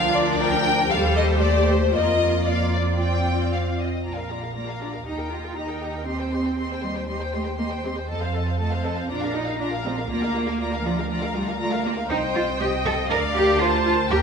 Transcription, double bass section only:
0.00 0.87 D2 medium
0.91 1.95 D#2 medium
1.95 3.85 F2 medium
4.05 5.02 A#1 soft
5.06 8.10 D#2 medium
8.10 9.10 F2 medium
9.10 10.08 A#1 medium
10.11 12.07 D2 medium
12.10 13.07 C2 medium
13.11 14.11 D2 medium
14.11 14.22 D#2 medium

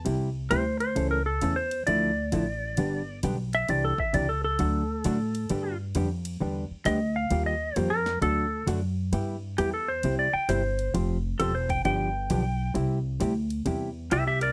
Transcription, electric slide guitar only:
0.51 0.79 C5 loud
0.80 1.10 C5 medium
1.11 1.26 A#4 medium
1.26 1.56 A4 medium
1.56 1.86 C5 medium
1.87 3.19 D5 medium
3.55 3.69 E5 loud
3.70 3.84 D5 medium
3.85 3.99 A4 medium
4.00 4.14 E5 medium
4.14 4.29 D5 medium
4.29 4.43 A4 medium
4.44 5.76 A4 loud
6.86 7.15 D#5 medium
7.16 7.46 F5 medium
7.46 7.76 D#5 medium
7.76 7.91 C5 medium
7.90 8.20 A#4 medium
8.22 8.66 A4 loud
9.58 9.73 G4 medium
9.74 9.88 A4 medium
9.88 10.18 C5 medium
10.19 10.33 D5 medium
10.34 10.48 G5 medium
10.49 10.93 C5 loud
11.40 11.54 A4 medium
11.55 11.69 C5 medium
11.70 11.84 G5 medium
11.85 12.73 G5 medium
14.12 14.26 G4 medium
14.12 14.26 E5 loud
14.27 14.41 G4 medium
14.27 14.42 E5 medium
14.41 14.52 A#4 medium
14.41 14.52 D5 medium

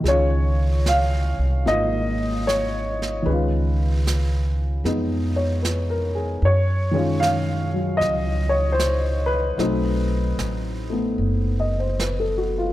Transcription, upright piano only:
0.00 3.21 D#3 soft
0.00 3.24 G#3 soft
0.08 3.27 C#4 soft
0.08 1.67 F4 soft
0.08 0.90 C#5 medium
0.88 1.64 F5 medium
1.66 3.26 A#3 soft
1.66 3.27 D#4 soft
1.66 3.28 F4 soft
1.66 2.50 D#5 medium
2.47 3.29 C#5 medium
3.22 6.41 D#3 soft
3.22 4.83 G#3 soft
3.22 4.55 B4 medium
3.29 6.44 C#4 soft
3.33 6.46 F4 soft
4.85 6.43 G#3 soft
4.85 6.43 B3 soft
4.85 6.44 D#4 soft
5.36 5.78 C#5 soft
5.63 6.13 B4 soft
5.90 6.31 A#4 soft
6.15 6.57 G#4 soft
6.45 7.25 C#5 medium
6.91 9.57 D#3 soft
6.91 9.58 G#3 soft
6.91 9.58 C#4 soft
6.97 9.59 F4 soft
7.20 8.02 F5 medium
7.74 9.57 F#3 soft
7.97 8.49 D#5 medium
8.49 8.75 C#5 medium
8.72 9.31 C5 medium
9.26 11.99 B4 medium
9.58 12.73 F#3 soft
9.58 10.88 A3 soft
9.58 12.73 C4 soft
9.58 12.73 D#4 soft
10.90 12.73 A3 soft
10.90 12.73 B3 soft
11.60 11.84 D#5 soft
11.80 12.07 C5 soft
12.00 12.37 B4 soft
12.20 12.54 A4 soft
12.38 12.63 F#4 soft
12.58 12.73 F4 soft

